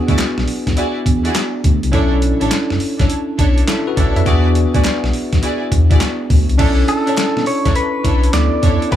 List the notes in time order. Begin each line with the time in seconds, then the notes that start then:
Already playing: B3 D4 F#4 G#4
0.08 D2 E4 F#4 G#4 D5, kick, closed hi-hat
0.18 snare, clap, closed hi-hat
0.38 B1, snare
0.48 open hi-hat
0.67 E2, kick, snare, closed hi-hat
0.76 E4 F#4 G#4 D5, closed hi-hat
1.06 E2, kick, closed hi-hat
1.24 E4 F#4 G#4 D5, closed hi-hat
1.35 snare, clap, closed hi-hat
1.64 D2, kick, closed hi-hat
1.83 C2, closed hi-hat
1.92 B1 C#4 D4 E4 A4 C#5, kick, closed hi-hat
2.22 closed hi-hat
2.41 A1 D4 E4 A4 C#5, closed hi-hat
2.51 snare, clap, closed hi-hat
2.70 F#1, snare
2.80 open hi-hat
2.99 B1 D4 E4 A4 C#5, kick, snare, closed hi-hat
3.10 closed hi-hat
3.38 B1 D4 E4 A4 C#5, kick, closed hi-hat
3.58 closed hi-hat
3.68 E4 A4, snare, clap, closed hi-hat
3.87 F#4 B4
3.96 A1 D4 E4 A4 C#5 D5, kick, closed hi-hat
4.16 F2 B4 E5, closed hi-hat
4.25 E2 B3 D4 E4 F#4 G#4 D5, kick, closed hi-hat
4.55 closed hi-hat
4.74 D2 E4 F#4 G#4 D5, kick, closed hi-hat
4.84 snare, clap, closed hi-hat
5.03 B1, snare
5.13 open hi-hat
5.33 E2, kick, snare, closed hi-hat
5.42 E4 F#4 G#4 D5, closed hi-hat
5.72 E2, kick, closed hi-hat
5.90 E4 F#4 G#4 D5, kick, closed hi-hat
6.01 snare, clap, closed hi-hat
6.30 D2, kick, open hi-hat
6.49 C2, closed hi-hat
6.58 B1 C#4 D4 E4 A4 C#5, kick, closed hi-hat, crash
6.88 A4, closed hi-hat
7.07 B2 D4 E4 A4 C#5, closed hi-hat
7.17 B2, snare, clap, closed hi-hat
7.36 B2, snare
7.46 C#5, open hi-hat
7.65 B1 D4 E4 A4 C#5, kick, snare, closed hi-hat
7.75 B4, closed hi-hat
8.04 B1 D4 E4 A4 C#5, kick, closed hi-hat
8.23 closed hi-hat
8.33 D2 B3 D4 E4 A4 D5, snare, clap, closed hi-hat
8.62 F2 D4 E4 A4 C#5, kick, closed hi-hat
8.82 closed hi-hat
8.91 E2 B3 D4 E4 F#4 G#4 B4 D5, kick, closed hi-hat